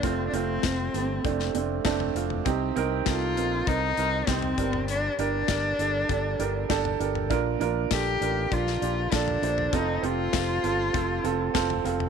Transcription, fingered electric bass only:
\new Staff \with { instrumentName = "Fingered electric bass" } { \clef bass \time 4/4 \key f \mixolydian \tempo 4 = 99 f,,8 f,,8 f,,8 g,,8 f,,8 f,,8 f,,8 f,,8 | c,8 c,8 c,8 bes,,8 c,8 c,8 c,8 g,,8~ | g,,8 g,,8 g,,8 g,,8 g,,8 g,,8 g,,8 g,,8 | bes,,8 bes,,8 bes,,8 a,,8 bes,,8 bes,,8 bes,,8 bes,,8 |
f,,8 f,,8 f,,8 g,,8 f,,8 f,,8 f,,8 f,,8 | }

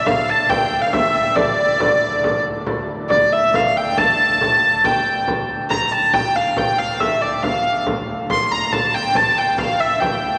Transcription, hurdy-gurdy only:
\new Staff \with { instrumentName = "Hurdy-gurdy" } { \time 3/4 \key d \minor \tempo 4 = 138 f''8 a''8 g''8. f''16 e''8 e''8 | d''2~ d''8 r8 | r4 d''8 e''8 f''8 g''8 | a''2 g''4 |
r4 bes''8 a''8 g''8 f''8 | g''8 f''8 e''8 d''8 f''4 | r4 c'''8 bes''8 a''8 g''8 | a''8 g''8 f''8 e''8 g''4 | }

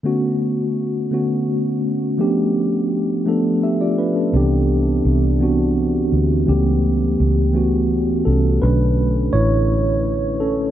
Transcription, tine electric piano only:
<<
  \new Staff \with { instrumentName = "Tine electric piano" } { \time 6/8 \key b \minor \tempo 4. = 56 r2. | r2 <g' e''>16 <f' d''>16 <d' b'>16 <cis' a'>16~ | <cis' a'>16 r2 r8. | r2 r8 <cis' a'>8 |
<d' b'>4 <e' cis''>4. <cis' a'>8 | }
  \new Staff \with { instrumentName = "Tine electric piano" } { \time 6/8 \key b \minor <d a b cis' fis'>4 r8 <d a b cis' fis'>4 r8 | <f a b d' g'>4 r8 <f a b d' a'>4 r8 | <d e b c' d' g'>4 r8 <e b c' d' fis'>4 r8 | <e a b cis' g'>4 r8 <e a b cis' fis'>4 r8 |
<d a cis'>4. r4. | }
>>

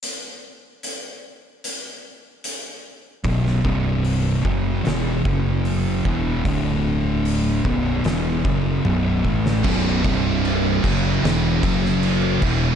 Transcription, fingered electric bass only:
\new Staff \with { instrumentName = "Fingered electric bass" } { \clef bass \time 4/4 \key fis \minor \tempo 4 = 75 r1 | b,,,8 c,,4 fis,,8 e,,8 fis,,4 e,,8 | d,,4. b,,,8 e,,8 fis,,8 b,,,8 a,,8 | b,,,8 c,,4 fis,,8 e,,8 fis,,4 e,,8 | }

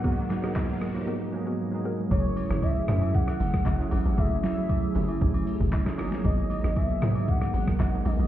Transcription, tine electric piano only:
\new Staff \with { instrumentName = "Tine electric piano" } { \time 4/4 \key gis \phrygian \tempo 4 = 116 <fis ais b dis' fis'>8 r16 <fis ais b dis' gis'>8. r16 <eis fis ais b dis'>8 r16 <fis ais b dis' gis'>8 r16 <fis ais b dis' gis'>8 r16 | <fis a cis' e' gis'>8 r16 <fis a cis' e' gis'>8 r16 <fis a cis' e' gis'>4. r16 <fis a cis' e' gis'>8 r16 | <fis a cis' e' gis'>8 r16 <fis a cis' e' gis'>8 r16 <fis a cis' e' g' gis'>4. r16 <fis a cis' e' gis'>16 <fis ais b dis' gis'>8~ | <fis ais b dis' gis'>8 r16 <fis ais b dis' gis'>8 r16 <fis ais b dis' gis'>4. r16 <fis ais b dis' gis'>8 r16 | }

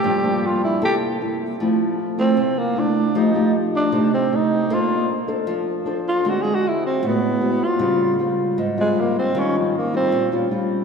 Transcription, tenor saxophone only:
\new Staff \with { instrumentName = "Tenor saxophone" } { \time 4/4 \key f \major \tempo 4 = 155 g'4 f'8 e'8 g'8 r4. | r4. c'4 bes8 d'4 | ees'4 r8 d'4 c'8 ees'4 | f'4 r2 r8 f'8 |
\tuplet 3/2 { fis'8 gis'8 fis'8 } e'8 c'8 b4. f'8~ | f'4 r4. aes8 bes8 c'8 | des'8 f8 bes8 c'4 r4. | }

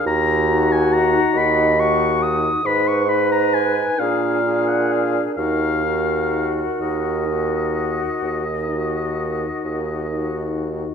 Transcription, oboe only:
\new Staff \with { instrumentName = "Oboe" } { \time 12/8 \key ees \minor \tempo 4. = 43 bes''8. aes''16 bes''8 ces'''8 des'''8 ees'''8 ces'''16 des'''16 ces'''16 bes''16 aes''8 f''8. ges''16 f''8 | f''4~ f''16 r16 ees''1 r8 | }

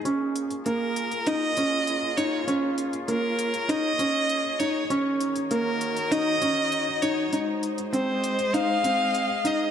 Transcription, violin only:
\new Staff \with { instrumentName = "Violin" } { \time 4/4 \key bes \minor \tempo 4 = 99 r4 bes'4 ees''4. des''8 | r4 bes'4 ees''4. des''8 | r4 bes'4 ees''4. des''8 | r4 c''4 f''4. ees''8 | }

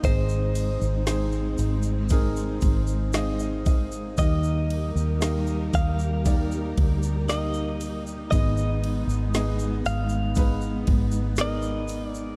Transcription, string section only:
\new Staff \with { instrumentName = "String section" } { \time 4/4 \key aes \lydian \tempo 4 = 58 <aes c' ees'>1 | <g ees' g' bes'>1 | <aes ces'>1 | }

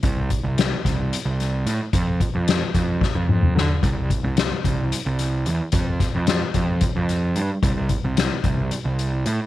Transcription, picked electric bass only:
\new Staff \with { instrumentName = "Picked electric bass" } { \clef bass \time 7/8 \key f \mixolydian \tempo 4 = 111 c,8 r16 c,8 r16 c,8 r16 c,8. a,16 r16 | f,8 r16 f,8 r16 f,8 r16 f,8. d16 r16 | c,8 r16 c,8 r16 c,8 r16 c,8. e,16 r16 | f,8 r16 f,8 r16 f,8 r16 f,8. g,16 r16 |
c,8 r16 c,8 r16 c,8 r16 c,8. a,16 r16 | }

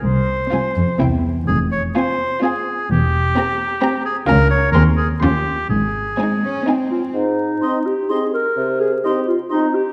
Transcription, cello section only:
\new Staff \with { instrumentName = "Cello section" } { \clef bass \time 3/4 \key f \minor \tempo 4 = 127 c,4 c,8 f,8 e,4 | f,4 r2 | e,4 r2 | \key aes \major des,4 ees,4 ees,4 |
aes,4 aes8 des'8 c'4 | r2. | r2. | }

